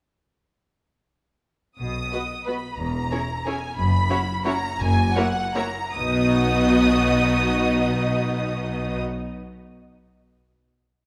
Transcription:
1.79 B1 B2 D#6
2.12 B3 F#4 B4 D#5
2.46 B3 F#4 B4 D#5 B5
2.79 E1 E2 A#5
3.12 C#4 E4 G#4 C#5
3.46 C#4 E4 G#4 C#5 G#5
3.77 F#1 F#2 B5
4.09 C#4 E4 F#4 C#5
4.45 C#4 E4 F#4 C#5 A#5
4.79 F#1 F#2 G#5
5.15 A#3 E4 F#4 C#5 F#5
5.55 A#3 E4 F#4 C#5 A#5
5.95 B1 B2 B3 D#4 F#4 D#5 D#6

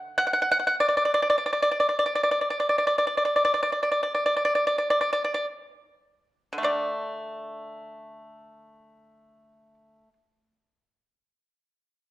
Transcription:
Already playing: D3 F#5
0.18 F#5
0.27 F#5
0.33 F#5
0.42 F#5
0.52 F#5
0.59 F#5
0.67 F#5
0.80 D5
0.89 D5
0.97 D5
1.05 D5
1.14 D5
1.22 D5
1.30 D5
1.38 D5
1.46 D5
1.53 D5
1.62 D5
1.71 D5
1.80 D5
1.89 D5
1.99 D5
2.06 D5
2.15 D5
2.23 D5
2.31 D5
2.41 D5
2.50 D5
2.60 D5
2.69 D5
2.78 D5
2.87 D5
2.98 D5
3.07 D5
3.17 D5
3.25 D5
3.36 D5
3.45 D5
3.54 D5
3.63 D5
3.72 D5
3.83 D5
3.92 D5
4.03 D5
4.15 D5
4.26 D5
4.37 D5
4.45 D5
4.55 D5
4.67 D5
4.78 D5
4.90 D5
5.01 D5
5.13 D5
5.24 D5
5.34 D5
6.53 D3
6.58 A3
6.63 D4 D5

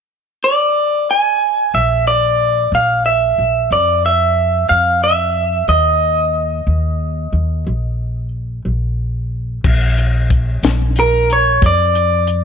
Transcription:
0.44 D5
1.11 G#5
1.74 A#1 E5
2.08 D5
2.72 A#1 F5
3.06 E5
3.38 A#1
3.71 F2 D5
4.06 E5
4.69 F2 F5
5.04 E5
5.68 D#2 D#5
6.67 D#2
7.33 D#2
7.67 A#1
8.65 A#1
9.64 A#1, kick, crash
9.98 closed hi-hat
10.30 kick, closed hi-hat
10.63 A#1, snare, closed hi-hat
10.96 A#4, closed hi-hat
11.30 C#5, closed hi-hat
11.62 F2, kick, closed hi-hat
11.66 D5
11.95 closed hi-hat
12.27 closed hi-hat

